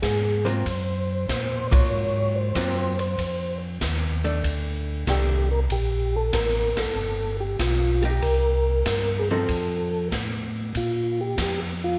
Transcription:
0.02 tonewheel organ G#2 G#4, kick, snare, hi-hat pedal, ride
0.45 hollow-body jazz guitar F#3 A#3 C4 F4, tonewheel organ C5, ride
0.65 tonewheel organ F#2, kick, ride
1.29 tonewheel organ A#2, kick, snare, hi-hat pedal, ride
1.71 hollow-body jazz guitar F#3 A#3 F4, tonewheel organ C#5, kick, ride
1.92 tonewheel organ G#2
2.36 tonewheel organ C5
2.55 tonewheel organ F#2, hollow-body jazz guitar F#3 A#3 C4 F4, kick, snare, hi-hat pedal, ride
2.99 tonewheel organ C5, ride
3.18 tonewheel organ F2, kick, ride
3.81 tonewheel organ D#2, kick, snare, hi-hat pedal, ride
4.24 hollow-body jazz guitar A3 D4, ride
4.43 tonewheel organ D2, kick, ride
5.07 tonewheel organ C2 G4, hollow-body jazz guitar D#3 A3 D4, kick, snare, hi-hat pedal, ride
5.51 tonewheel organ A#4
5.70 tonewheel organ A#1 G4, kick, ride
6.16 tonewheel organ A4
6.33 tonewheel organ A1 A#4, kick, snare, hi-hat pedal, ride
6.76 tonewheel organ A1 A4, snare, ride
6.95 tonewheel organ G1
7.40 tonewheel organ G4
7.59 tonewheel organ B1 F4, kick, snare, hi-hat pedal, ride
8.02 hollow-body jazz guitar A#3 D#4 G4, tonewheel organ G4, ride
8.22 tonewheel organ C2 A#4, kick, ride
8.85 tonewheel organ G2, kick, snare, hi-hat pedal, ride
9.19 tonewheel organ G#4
9.30 hollow-body jazz guitar F3 C4 D#4 A4, tonewheel organ A4
9.48 tonewheel organ F2, kick, ride
10.12 tonewheel organ A2, kick, snare, hi-hat pedal, ride
10.75 tonewheel organ A#2 F4, kick, ride
11.21 tonewheel organ G4
11.38 tonewheel organ F2, kick, snare, hi-hat pedal, ride
11.42 tonewheel organ G4
11.84 tonewheel organ F4

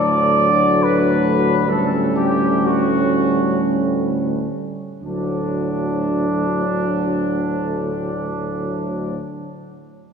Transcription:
Already playing: tuba D2, euphonium A2, trombone section F#3, french horn section D4, trumpet section D5
0.82 trumpet section B4
1.67 euphonium A2, trombone section G3, french horn section C#4, trumpet section A4
2.15 trumpet section G4
2.66 trumpet section F#4
5.00 tuba D2, euphonium A2, trombone section F#3, trumpet section D4, french horn section D4

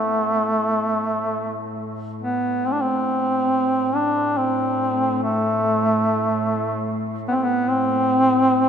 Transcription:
Already playing: cello section A2, duduk A3
2.22 duduk B3
2.66 cello section A2, duduk C4
2.72 duduk D4
2.81 duduk C4
3.96 duduk D4
4.37 duduk C4
5.23 duduk A3
7.28 duduk B3 C4
7.41 duduk B3
7.70 duduk C4

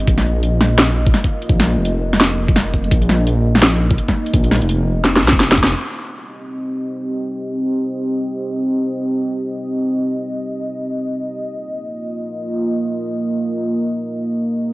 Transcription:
Already playing: analog synth pad D#5
0.07 detuned saw bass A#1, analog synth pad A#3 F4, kick, closed hi-hat
0.18 snare, closed hi-hat
0.43 closed hi-hat
0.61 snare
0.78 snare, closed hi-hat
1.07 kick
1.14 snare, closed hi-hat
1.24 kick
1.42 closed hi-hat
1.49 detuned saw bass A#1, kick
1.60 snare, closed hi-hat
1.78 detuned saw bass F1
1.85 closed hi-hat
2.13 snare
2.20 snare, closed hi-hat
2.48 kick
2.56 snare, closed hi-hat
2.74 kick
2.84 closed hi-hat
2.91 detuned saw bass A#1, analog synth pad D#4, kick, closed hi-hat
3.02 closed hi-hat
3.09 snare
3.27 closed hi-hat
3.55 snare
3.63 snare, closed hi-hat
3.91 kick
3.98 closed hi-hat
4.08 kick, snare
4.26 closed hi-hat
4.34 detuned saw bass A#1, kick, closed hi-hat
4.44 closed hi-hat
4.51 snare
4.62 detuned saw bass F1, closed hi-hat
4.69 closed hi-hat
5.05 snare, closed hi-hat
5.16 snare
5.22 detuned saw bass C2
5.28 snare
5.33 detuned saw bass F1, kick
5.40 snare, closed hi-hat
5.52 snare
5.58 kick
5.64 snare
5.68 closed hi-hat
5.76 analog synth pad C4 G4 D#5
11.44 analog synth pad A#3 F4
14.28 analog synth pad G4

